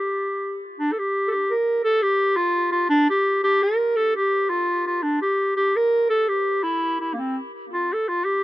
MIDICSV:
0, 0, Header, 1, 2, 480
1, 0, Start_track
1, 0, Tempo, 354820
1, 1069, Time_signature, 6, 3, 24, 8
1, 11412, End_track
2, 0, Start_track
2, 0, Title_t, "Clarinet"
2, 0, Program_c, 0, 71
2, 0, Note_on_c, 0, 67, 72
2, 860, Note_off_c, 0, 67, 0
2, 1071, Note_on_c, 0, 62, 98
2, 1244, Note_on_c, 0, 69, 73
2, 1264, Note_off_c, 0, 62, 0
2, 1337, Note_on_c, 0, 67, 88
2, 1357, Note_off_c, 0, 69, 0
2, 1718, Note_off_c, 0, 67, 0
2, 1726, Note_on_c, 0, 69, 68
2, 1773, Note_on_c, 0, 67, 89
2, 1793, Note_off_c, 0, 69, 0
2, 2037, Note_on_c, 0, 70, 81
2, 2057, Note_off_c, 0, 67, 0
2, 2483, Note_off_c, 0, 70, 0
2, 2491, Note_on_c, 0, 69, 93
2, 2743, Note_on_c, 0, 67, 98
2, 2763, Note_off_c, 0, 69, 0
2, 3196, Note_on_c, 0, 65, 97
2, 3216, Note_off_c, 0, 67, 0
2, 3669, Note_off_c, 0, 65, 0
2, 3677, Note_on_c, 0, 65, 91
2, 3909, Note_off_c, 0, 65, 0
2, 3914, Note_on_c, 0, 62, 113
2, 4179, Note_off_c, 0, 62, 0
2, 4192, Note_on_c, 0, 67, 99
2, 4624, Note_off_c, 0, 67, 0
2, 4647, Note_on_c, 0, 67, 104
2, 4906, Note_on_c, 0, 70, 90
2, 4926, Note_off_c, 0, 67, 0
2, 5361, Note_on_c, 0, 69, 110
2, 5382, Note_off_c, 0, 70, 0
2, 5618, Note_off_c, 0, 69, 0
2, 5627, Note_on_c, 0, 67, 86
2, 6081, Note_on_c, 0, 65, 94
2, 6102, Note_off_c, 0, 67, 0
2, 6580, Note_off_c, 0, 65, 0
2, 6588, Note_on_c, 0, 65, 84
2, 6799, Note_on_c, 0, 62, 91
2, 6819, Note_off_c, 0, 65, 0
2, 7049, Note_off_c, 0, 62, 0
2, 7057, Note_on_c, 0, 67, 86
2, 7496, Note_off_c, 0, 67, 0
2, 7527, Note_on_c, 0, 67, 98
2, 7795, Note_on_c, 0, 70, 92
2, 7815, Note_off_c, 0, 67, 0
2, 8242, Note_off_c, 0, 70, 0
2, 8250, Note_on_c, 0, 69, 97
2, 8506, Note_on_c, 0, 67, 87
2, 8526, Note_off_c, 0, 69, 0
2, 8973, Note_on_c, 0, 64, 95
2, 8993, Note_off_c, 0, 67, 0
2, 9468, Note_off_c, 0, 64, 0
2, 9476, Note_on_c, 0, 64, 78
2, 9650, Note_on_c, 0, 58, 60
2, 9670, Note_off_c, 0, 64, 0
2, 9694, Note_on_c, 0, 60, 78
2, 9715, Note_off_c, 0, 58, 0
2, 9970, Note_off_c, 0, 60, 0
2, 10462, Note_on_c, 0, 65, 82
2, 10727, Note_on_c, 0, 69, 82
2, 10747, Note_off_c, 0, 65, 0
2, 10934, Note_on_c, 0, 65, 93
2, 10955, Note_off_c, 0, 69, 0
2, 11157, Note_on_c, 0, 67, 101
2, 11177, Note_off_c, 0, 65, 0
2, 11412, Note_off_c, 0, 67, 0
2, 11412, End_track
0, 0, End_of_file